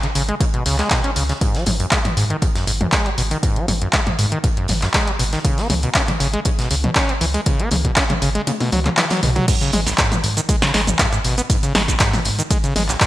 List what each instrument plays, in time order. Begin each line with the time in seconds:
0.03 acid bass C#3, closed hi-hat
0.15 sub bass G#1, acid bass C#3, closed hi-hat, open hi-hat
0.29 acid bass G#3, closed hi-hat
0.40 acid bass C#3, kick, closed hi-hat
0.54 acid bass B2, closed hi-hat
0.66 sub bass C#2, acid bass C#3, snare, closed hi-hat, open hi-hat
0.78 acid bass G#3, snare, clap, closed hi-hat
0.90 acid bass B2, kick, snare, clap, closed hi-hat
1.04 acid bass C#4, closed hi-hat
1.16 sub bass C#2, acid bass C#3, closed hi-hat, open hi-hat
1.29 acid bass C#3, snare, closed hi-hat
1.41 acid bass G#2, kick, closed hi-hat
1.54 acid bass F#3, snare, closed hi-hat
1.66 sub bass G#1, acid bass G#2, closed hi-hat, open hi-hat, mid tom
1.80 acid bass F#2, closed hi-hat
1.91 acid bass G#3, kick, snare, clap, closed hi-hat
2.05 acid bass G#2, closed hi-hat, mid tom
2.17 acid bass G#2, sub bass G#2, closed hi-hat, open hi-hat
2.30 acid bass D#3, closed hi-hat
2.42 acid bass G#2, kick, closed hi-hat
2.55 acid bass F#2, snare, closed hi-hat
2.67 sub bass G#1, acid bass G#2, closed hi-hat, open hi-hat
2.81 acid bass F#2, closed hi-hat, mid tom
2.92 acid bass G#3, kick, snare, clap, closed hi-hat
3.06 acid bass F#3, closed hi-hat
3.18 sub bass G#1, acid bass B2, closed hi-hat, open hi-hat
3.31 acid bass D#3, closed hi-hat
3.43 acid bass G#2, kick, closed hi-hat
3.56 acid bass F#3, closed hi-hat
3.68 sub bass G#1, acid bass G#2, closed hi-hat, open hi-hat, mid tom
3.81 acid bass F#2, closed hi-hat
3.93 acid bass G#3, kick, snare, clap, closed hi-hat
4.07 acid bass G#2, closed hi-hat, mid tom
4.19 sub bass G#2, acid bass G#2, closed hi-hat, open hi-hat
4.32 acid bass D#3, closed hi-hat
4.44 acid bass G#2, kick, closed hi-hat
4.57 acid bass F#2, closed hi-hat
4.68 sub bass G#1, acid bass G#2, snare, closed hi-hat, open hi-hat, mid tom
4.82 acid bass F#2, snare, clap, closed hi-hat
4.94 acid bass G#3, kick, snare, clap, closed hi-hat
5.07 acid bass F#3, closed hi-hat
5.19 sub bass G#1, acid bass B2, closed hi-hat, open hi-hat
5.33 acid bass D#3, snare, closed hi-hat
5.45 acid bass C#3, kick, closed hi-hat
5.58 acid bass B3, snare, closed hi-hat
5.70 sub bass C#2, acid bass C#3, closed hi-hat, open hi-hat, mid tom
5.83 acid bass B2, closed hi-hat
5.94 acid bass C#4, kick, snare, clap, closed hi-hat
6.08 acid bass C#3, closed hi-hat, mid tom
6.20 sub bass G#1, acid bass C#3, closed hi-hat, open hi-hat
6.33 acid bass G#3, closed hi-hat
6.45 acid bass C#3, kick, closed hi-hat
6.59 acid bass B2, snare, closed hi-hat
6.71 sub bass C#2, acid bass C#3, closed hi-hat, open hi-hat
6.84 acid bass B2, closed hi-hat, mid tom
6.95 acid bass C#4, kick, snare, clap, closed hi-hat
7.09 acid bass B3, closed hi-hat
7.21 sub bass C#2, acid bass E3, closed hi-hat, open hi-hat
7.34 acid bass G#3, closed hi-hat
7.46 acid bass C#3, kick, closed hi-hat
7.60 acid bass B3, closed hi-hat
7.71 sub bass C#2, acid bass C#3, closed hi-hat, open hi-hat, mid tom
7.85 acid bass B2, kick, closed hi-hat
7.96 acid bass C#4, kick, snare, clap, closed hi-hat
8.10 acid bass C#3, closed hi-hat, mid tom
8.22 sub bass G#1, acid bass C#3, closed hi-hat, open hi-hat
8.35 acid bass G#3, closed hi-hat
8.47 acid bass C#3, closed hi-hat, high tom
8.60 acid bass B2, open hi-hat, high tom
8.72 sub bass C#2, acid bass F#3, open hi-hat, mid tom
8.85 acid bass C#3, clap, closed hi-hat, mid tom
8.97 acid bass E3, snare, clap, closed hi-hat, mid tom
9.10 acid bass F#3, snare, closed hi-hat, mid tom
9.23 sub bass B1, acid bass B2, closed hi-hat, mid tom, open hi-hat
9.36 acid bass F#3, closed hi-hat, mid tom
9.48 acid bass G#2, kick, closed hi-hat, ride, crash, shaker
9.60 acid bass C#3, snare, closed hi-hat, shaker
9.73 sub bass G#1, acid bass G#3, closed hi-hat, open hi-hat, mid tom
9.87 acid bass G#1, snare, closed hi-hat, open hi-hat, shaker
9.98 acid bass G#2, kick, snare, clap, closed hi-hat, ride, shaker
10.12 acid bass B2, closed hi-hat, mid tom, shaker
10.24 acid bass G#1, sub bass G#2, closed hi-hat, open hi-hat
10.37 acid bass D#3, closed hi-hat, shaker
10.49 acid bass G#3, kick, closed hi-hat, ride, shaker
10.62 acid bass C#3, snare, closed hi-hat, shaker
10.74 sub bass G#1, acid bass G#3, snare, closed hi-hat, open hi-hat
10.87 acid bass G#1, closed hi-hat, mid tom, shaker
10.99 acid bass G#2, kick, snare, clap, closed hi-hat, ride, shaker
11.13 acid bass G#2, closed hi-hat, shaker
11.24 sub bass G#1, acid bass B2, closed hi-hat, open hi-hat
11.37 acid bass B3, closed hi-hat, shaker
11.50 acid bass G#2, kick, closed hi-hat, ride, shaker
11.63 acid bass C#3, closed hi-hat, shaker
11.75 sub bass G#1, acid bass G#3, snare, closed hi-hat, open hi-hat, mid tom
11.88 acid bass G#1, kick, snare, closed hi-hat, shaker
12.00 acid bass G#2, kick, snare, clap, closed hi-hat, ride, shaker
12.13 acid bass B2, open hi-hat, mid tom, shaker
12.25 acid bass G#1, sub bass G#2, closed hi-hat, open hi-hat
12.39 acid bass D#3, closed hi-hat, shaker
12.51 acid bass G#3, kick, closed hi-hat, ride, shaker
12.64 acid bass C#3, closed hi-hat, shaker
12.76 sub bass G#1, acid bass G#3, snare, closed hi-hat, open hi-hat, mid tom
12.89 acid bass G#1, snare, clap, closed hi-hat, shaker
13.00 acid bass G#2, kick, snare, clap, closed hi-hat, ride, shaker